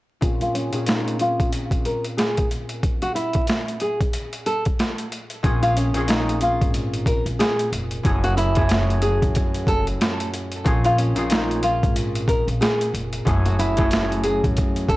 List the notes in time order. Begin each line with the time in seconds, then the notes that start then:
0.21 A#2 C4 C#4 F4 G#4, kick, closed hi-hat
0.41 F4, closed hi-hat
0.54 C#4, closed hi-hat
0.72 A#2 C4 C#4 F4 G#4, closed hi-hat
0.86 D#4, snare, closed hi-hat
1.08 closed hi-hat
1.19 F4, closed hi-hat
1.40 kick, closed hi-hat
1.52 closed hi-hat
1.71 kick, closed hi-hat
1.85 A#4, closed hi-hat
2.04 closed hi-hat
2.17 G#4, snare, closed hi-hat
2.37 kick, closed hi-hat
2.51 closed hi-hat
2.69 closed hi-hat
2.83 kick, closed hi-hat
3.02 F#4, closed hi-hat
3.15 E4, closed hi-hat
3.33 kick, closed hi-hat
3.47 snare, closed hi-hat
3.68 closed hi-hat
3.80 G#4, closed hi-hat
4.01 kick, closed hi-hat
4.13 closed hi-hat
4.33 closed hi-hat
4.46 A4, closed hi-hat
4.65 kick, closed hi-hat
4.79 snare, closed hi-hat
4.98 closed hi-hat
5.12 closed hi-hat
5.30 closed hi-hat
5.43 A#1 A#2 C4 C#4 F4 G#4, kick, closed hi-hat
5.63 F4, closed hi-hat
5.77 C#4, closed hi-hat
5.94 A#2 C4 C#4 F4 G#4, closed hi-hat
6.08 D#4, snare, closed hi-hat
6.29 closed hi-hat
6.41 F4, closed hi-hat
6.61 G#1, kick, closed hi-hat
6.74 closed hi-hat
6.94 closed hi-hat
7.06 A#4, kick, closed hi-hat
7.26 A#1, closed hi-hat
7.39 G#4, snare, closed hi-hat
7.59 closed hi-hat
7.72 F1, closed hi-hat
7.91 closed hi-hat
8.03 F#1 F#2 A3 C#4 E4 G#4, kick, closed hi-hat
8.24 F#4, closed hi-hat
8.37 E4, closed hi-hat
8.55 F#2 A3 C#4 E4 G#4, kick, closed hi-hat
8.69 snare, closed hi-hat
8.90 closed hi-hat
9.02 G#4, closed hi-hat
9.22 A1, kick, closed hi-hat
9.35 kick, closed hi-hat
9.54 closed hi-hat
9.67 F#1 A4, kick, closed hi-hat
9.87 closed hi-hat
10.01 snare, closed hi-hat
10.20 closed hi-hat
10.34 closed hi-hat
10.52 closed hi-hat
10.64 A#1 A#2 C4 C#4 F4 G#4, kick, closed hi-hat
10.84 F4, closed hi-hat
10.98 C#4, closed hi-hat
11.16 A#2 C4 C#4 F4 G#4, closed hi-hat
11.30 D#4, snare, closed hi-hat
11.51 closed hi-hat
11.63 F4, closed hi-hat
11.83 G#1, kick, closed hi-hat
11.96 closed hi-hat
12.15 closed hi-hat
12.28 A#4, kick, closed hi-hat
12.48 A#1, closed hi-hat
12.61 G#4, snare, closed hi-hat
12.81 closed hi-hat
12.94 F1, closed hi-hat
13.13 closed hi-hat
13.25 F#1 F#2 A3 C#4 E4 G#4, kick, closed hi-hat
13.46 F#4, closed hi-hat
13.59 E4, closed hi-hat
13.77 F#2 A3 C#4 E4 G#4, kick, closed hi-hat
13.91 snare, closed hi-hat
14.12 closed hi-hat
14.24 G#4, closed hi-hat
14.44 A1, kick, closed hi-hat
14.57 kick, closed hi-hat
14.76 closed hi-hat
14.89 F#1 A4, kick, closed hi-hat